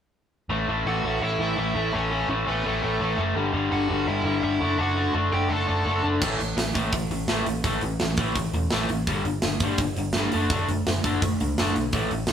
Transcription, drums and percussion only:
6.22 kick loud
6.22 crash loud
6.40 open hi-hat soft
6.58 snare loud
6.58 open hi-hat medium
6.75 kick medium
6.75 open hi-hat medium
6.92 kick loud
6.92 open hi-hat medium
7.11 open hi-hat medium
7.28 snare loud
7.28 open hi-hat medium
7.46 open hi-hat medium
7.64 kick loud
7.64 open hi-hat medium
7.81 open hi-hat soft
8.00 snare loud
8.00 open hi-hat medium
8.17 kick medium
8.17 open hi-hat medium
8.36 kick loud
8.36 open hi-hat medium
8.53 open hi-hat soft
8.71 snare loud
8.71 open hi-hat medium
8.89 open hi-hat soft
9.07 kick medium
9.07 open hi-hat medium
9.25 open hi-hat soft
9.42 snare loud
9.42 open hi-hat medium
9.60 kick medium
9.60 open hi-hat medium
9.78 kick loud
9.78 open hi-hat medium
9.96 open hi-hat medium
10.13 snare loud
10.13 open hi-hat medium
10.32 open hi-hat medium
10.50 kick loud
10.50 open hi-hat medium
10.69 open hi-hat medium
10.87 snare loud
10.87 open hi-hat medium
11.04 kick medium
11.04 open hi-hat medium
11.22 kick loud
11.22 open hi-hat medium
11.40 open hi-hat medium
11.58 snare loud
11.58 open hi-hat medium
11.76 open hi-hat soft
11.93 kick loud
11.93 open hi-hat medium
12.11 open hi-hat soft
12.27 snare loud
12.27 open hi-hat medium

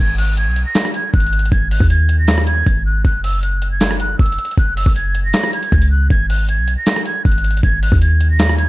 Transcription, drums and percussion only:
0.18 open hi-hat medium
0.37 closed hi-hat medium
0.56 closed hi-hat medium
0.75 snare loud
0.75 clap medium
0.75 closed hi-hat medium
0.85 cross-stick medium
0.94 closed hi-hat medium
1.14 kick loud
1.14 closed hi-hat medium
1.20 closed hi-hat medium
1.26 closed hi-hat medium
1.33 closed hi-hat medium
1.39 closed hi-hat medium
1.46 closed hi-hat medium
1.52 kick loud
1.52 closed hi-hat medium
1.71 open hi-hat medium
1.80 kick loud
1.90 closed hi-hat medium
2.09 closed hi-hat medium
2.28 snare loud
2.28 clap medium
2.28 closed hi-hat medium
2.38 cross-stick loud
2.47 closed hi-hat medium
2.67 kick loud
2.67 closed hi-hat medium
3.05 kick loud
3.05 closed hi-hat medium
3.24 open hi-hat medium
3.43 closed hi-hat medium
3.62 closed hi-hat medium
3.80 snare loud
3.80 clap medium
3.80 closed hi-hat medium
3.91 cross-stick loud
4.00 closed hi-hat medium
4.19 kick loud
4.19 closed hi-hat medium
4.26 closed hi-hat medium
4.32 closed hi-hat medium
4.38 closed hi-hat medium
4.45 closed hi-hat medium
4.51 closed hi-hat medium
4.58 kick loud
4.58 closed hi-hat medium
4.77 open hi-hat medium
4.86 kick loud
4.96 closed hi-hat medium
5.15 closed hi-hat medium
5.33 snare loud
5.33 clap medium
5.33 closed hi-hat medium
5.44 cross-stick loud
5.53 closed hi-hat medium
5.63 closed hi-hat soft
5.72 kick loud
5.72 closed hi-hat medium
5.82 closed hi-hat soft
6.10 kick loud
6.10 closed hi-hat medium
6.30 open hi-hat medium
6.49 closed hi-hat medium
6.68 closed hi-hat medium
6.86 snare loud
6.86 clap medium
6.86 closed hi-hat medium
6.96 cross-stick medium
7.06 closed hi-hat medium
7.25 kick loud
7.25 closed hi-hat medium
7.31 closed hi-hat medium
7.38 closed hi-hat medium
7.44 closed hi-hat medium
7.51 closed hi-hat medium
7.57 closed hi-hat medium
7.63 kick loud
7.63 closed hi-hat medium
7.83 open hi-hat medium
7.92 kick loud
8.02 closed hi-hat medium
8.21 closed hi-hat medium
8.39 snare loud
8.39 clap medium
8.39 closed hi-hat medium
8.49 cross-stick medium
8.58 closed hi-hat medium

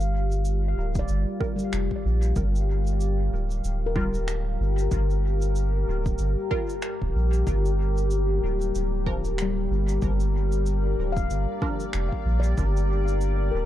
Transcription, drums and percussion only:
0.00 cabasa soft
0.32 cabasa medium
0.45 cabasa medium
0.95 kick loud
0.95 cabasa medium
1.08 cabasa medium
1.41 kick loud
1.59 cabasa medium
1.73 finger snap medium
1.73 cabasa medium
1.91 kick medium
2.22 cabasa medium
2.36 kick loud
2.36 cabasa medium
2.55 cabasa soft
2.87 cabasa medium
3.00 cabasa medium
3.51 cabasa medium
3.64 cabasa medium
3.96 kick loud
4.14 cabasa medium
4.28 finger snap medium
4.28 cabasa medium
4.78 cabasa medium
4.91 kick loud
4.91 cabasa medium
5.10 cabasa soft
5.42 cabasa medium
5.55 cabasa medium
6.06 kick loud
6.06 cabasa medium
6.18 cabasa medium
6.51 kick loud
6.69 cabasa soft
6.82 finger snap medium
6.82 cabasa medium
7.02 kick medium
7.33 cabasa medium
7.47 kick loud
7.47 cabasa medium
7.65 cabasa soft
7.97 cabasa medium
8.11 cabasa medium
8.61 cabasa medium
8.75 cabasa medium
9.06 kick loud
9.25 cabasa medium
9.38 finger snap medium
9.38 cabasa medium
9.88 cabasa medium
10.02 kick loud
10.02 cabasa medium
10.20 cabasa soft
10.52 cabasa medium
10.66 cabasa medium
11.17 kick loud
11.17 cabasa medium
11.30 cabasa medium
11.62 kick loud
11.80 cabasa medium
11.93 finger snap medium
11.93 cabasa medium
12.12 kick medium
12.43 cabasa medium
12.57 kick loud
12.57 cabasa medium
12.77 cabasa soft
13.08 cabasa medium
13.21 cabasa medium

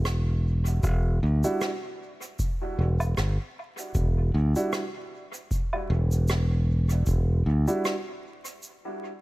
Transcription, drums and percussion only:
0.05 cross-stick medium
0.05 shaker medium
0.66 shaker medium
0.83 kick medium
0.83 shaker soft
1.44 shaker medium
1.61 cross-stick medium
1.61 shaker medium
2.22 shaker medium
2.39 kick loud
2.39 shaker medium
3.00 low woodblock medium
3.00 shaker medium
3.17 cross-stick medium
3.17 shaker medium
3.78 shaker medium
3.95 kick medium
3.95 shaker medium
4.56 shaker medium
4.73 cross-stick medium
4.73 shaker medium
5.34 shaker medium
5.51 kick loud
5.51 shaker medium
5.73 low woodblock medium
6.11 shaker medium
6.28 cross-stick medium
6.28 shaker medium
6.90 shaker medium
7.06 kick medium
7.06 shaker medium
7.68 shaker medium
7.85 cross-stick medium
7.85 shaker medium
8.45 shaker medium
8.62 shaker medium

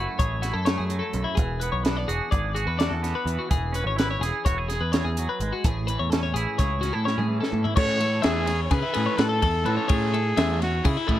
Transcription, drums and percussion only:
0.20 kick loud
0.20 closed hi-hat medium
0.43 snare soft
0.43 closed hi-hat medium
0.66 snare loud
0.66 closed hi-hat medium
0.90 closed hi-hat medium
1.13 closed hi-hat soft
1.37 kick loud
1.37 closed hi-hat medium
1.61 closed hi-hat medium
1.85 snare loud
1.85 closed hi-hat medium
2.09 closed hi-hat medium
2.32 kick loud
2.32 closed hi-hat medium
2.56 closed hi-hat medium
2.80 snare loud
2.80 closed hi-hat medium
3.04 snare soft
3.04 closed hi-hat medium
3.27 closed hi-hat medium
3.51 kick loud
3.51 closed hi-hat medium
3.74 closed hi-hat medium
3.99 snare medium
3.99 closed hi-hat medium
4.23 snare soft
4.23 closed hi-hat medium
4.46 kick loud
4.46 closed hi-hat medium
4.70 snare soft
4.70 closed hi-hat medium
4.93 snare loud
4.93 closed hi-hat medium
5.17 closed hi-hat medium
5.40 closed hi-hat medium
5.64 kick loud
5.64 closed hi-hat medium
5.88 closed hi-hat medium
6.12 snare loud
6.12 closed hi-hat medium
6.36 closed hi-hat medium
6.59 kick loud
6.59 snare soft
6.59 closed hi-hat medium
6.83 snare soft
6.83 closed hi-hat medium
7.07 snare medium
7.19 high tom medium
7.43 snare medium
7.54 floor tom medium
7.65 floor tom medium
7.77 kick loud
7.77 crash loud
8.00 ride medium
8.23 snare loud
8.23 ride loud
8.47 snare soft
8.47 ride medium
8.71 kick loud
8.71 snare soft
8.71 ride loud
8.94 snare soft
8.94 ride medium
9.18 snare loud
9.18 ride loud
9.42 kick medium
9.42 ride medium
9.66 ride medium
9.89 kick loud
9.89 ride loud
10.14 ride medium
10.37 snare loud
10.37 ride medium
10.62 snare soft
10.62 ride medium
10.85 kick loud
10.85 ride loud
11.09 kick medium
11.09 ride medium

